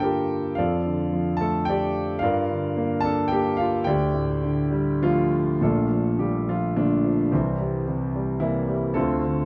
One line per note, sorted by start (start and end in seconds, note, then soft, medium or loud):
0.00 0.55 G2 medium
0.00 0.28 D3 soft
0.00 0.55 A#3 soft
0.00 0.56 D4 medium
0.00 0.57 F4 soft
0.00 0.03 G4 medium
0.00 0.55 G4 medium
0.00 0.59 A4 medium
0.00 0.02 A#4 medium
0.00 0.54 A#4 medium
0.00 0.58 D5 medium
0.00 0.60 G5 medium
0.00 0.60 A5 medium
0.55 2.19 F2 medium
0.55 1.37 F4 medium
0.55 1.36 A4 medium
0.55 1.36 D5 medium
0.55 1.41 F5 medium
0.85 1.92 D3 soft
1.13 2.19 F3 medium
1.37 1.67 A5 medium
1.41 2.21 A3 medium
1.41 1.66 A4 medium
1.65 2.21 D4 medium
1.65 2.20 G4 medium
1.65 2.23 G5 medium
1.70 2.20 D5 medium
2.19 3.83 G2 medium
2.19 3.00 F4 medium
2.19 3.00 D5 medium
2.19 3.05 F5 medium
2.23 3.00 A#4 medium
2.50 3.56 D3 soft
2.77 3.30 A#3 medium
3.00 3.85 D4 medium
3.00 3.28 A5 loud
3.05 3.30 A4 medium
3.28 3.86 A#3 medium
3.28 3.59 G5 medium
3.32 3.58 G4 medium
3.57 3.86 F4 medium
3.57 3.87 F5 medium
3.84 5.58 D2 medium
3.84 4.99 G4 medium
3.84 4.99 D5 medium
3.84 4.98 G5 medium
4.14 5.29 A2 medium
4.43 5.58 D3 medium
4.71 5.59 G3 medium
5.03 5.58 F3 medium
5.03 5.60 A3 medium
5.03 5.61 F4 medium
5.61 7.28 A#1 medium
5.61 6.18 A#2 medium
5.61 6.16 A3 medium
5.61 6.16 D4 medium
5.61 6.16 F4 medium
5.61 6.22 A4 medium
5.90 6.47 F3 soft
6.19 6.75 A#2 soft
6.19 6.47 G3 medium
6.19 6.49 G4 medium
6.49 7.03 F3 medium
6.49 6.78 F4 medium
6.76 7.31 A#2 soft
6.76 7.29 D3 soft
6.76 7.29 A3 medium
6.76 7.28 D4 medium
7.05 7.32 F3 medium
7.32 8.92 C2 medium
7.32 7.86 C3 medium
7.32 8.38 E3 medium
7.32 7.59 G3 medium
7.32 8.45 C4 medium
7.61 8.14 G3 soft
7.88 8.41 C3 medium
8.16 8.68 G3 soft
8.40 8.95 C3 medium
8.40 8.92 E3 medium
8.40 8.92 A#3 medium
8.40 8.97 E4 medium
8.69 8.95 G3 medium
8.94 9.45 D2 medium
8.94 9.22 D3 medium
8.94 9.45 A3 medium
8.94 9.45 C4 medium
8.94 9.45 F4 medium
8.94 9.45 A4 medium
9.23 9.45 D3 medium